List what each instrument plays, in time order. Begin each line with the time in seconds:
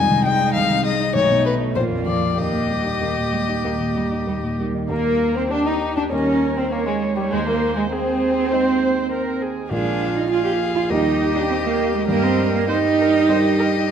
Already playing: grand piano C2, cello G#3, viola D#4, violin G#5
0.10 grand piano C3
0.24 grand piano G#3, violin G5
0.41 grand piano D#4
0.54 grand piano C2, violin F5
0.70 grand piano C3
0.85 grand piano G#3, violin D#5
1.00 grand piano D#4
1.15 grand piano B1, cello A3, viola D#4, violin C#5
1.30 grand piano B2
1.45 grand piano A3, violin B4
1.60 grand piano D#4
1.75 grand piano A#1, cello A#3, viola F4, violin C5
1.90 grand piano F2
2.06 grand piano F3, violin D5
2.22 grand piano F4
2.38 grand piano D#2, cello A#3, viola G4, violin D#5
2.53 grand piano A#2
2.69 grand piano G3
2.85 grand piano D#4
3.01 grand piano D#2, cello A#3
3.17 grand piano A#2
3.32 grand piano G3, cello G#3
3.48 grand piano D#4
3.64 grand piano D#2, cello A#3
3.80 grand piano A#2
3.95 grand piano G3, cello G3
4.12 grand piano D#4
4.27 grand piano D#2, cello G3
4.43 grand piano A#2
4.59 cello D#3, grand piano G3
4.75 grand piano D#4
4.89 grand piano D#2 G3 D#4 A#4, cello A#3, violin A#3, viola A#4
5.35 violin C4, cello C4
5.50 cello D4, violin D4, viola G4
5.66 cello D#4, violin D#4
5.96 violin D4, cello D4
6.11 grand piano D#2 G3 D#4 A#4, violin C#4, cello C#4, viola A#4
6.57 violin C4, cello C4
6.72 cello A#3, violin A#3, viola C#5
6.86 violin G#3, cello G#3
7.16 violin G3, cello G3
7.31 grand piano D#2, violin G#3, cello G#3, viola C5
7.46 cello A#3, violin A#3
7.76 violin G#3, cello G#3
7.91 violin C4, cello C4, viola G#4
8.51 grand piano G#3 D#4 G#4, viola C5
9.11 viola A#4
9.42 viola G#4
9.70 grand piano A#1 G#3 F4 A#4, cello D4, viola F4, violin G#4 F5
10.16 cello D#4
10.30 cello F4, violin G#4 F5
10.45 cello G4
10.75 cello F4
10.89 grand piano D#2 G3 D#4 A#4, cello D#4, viola G4, violin G4 D#5
11.35 cello D4
11.49 cello C4
11.64 cello A#3
11.94 cello G#3
12.08 grand piano G2, cello A#3, violin G4 D#5, viola A#4
12.23 cello C4
12.54 cello A#3
12.68 cello D#4, violin G4 D#5, viola C5
12.99 viola A#4
13.29 grand piano G3 D#4 A#4, viola C5
13.59 viola A#4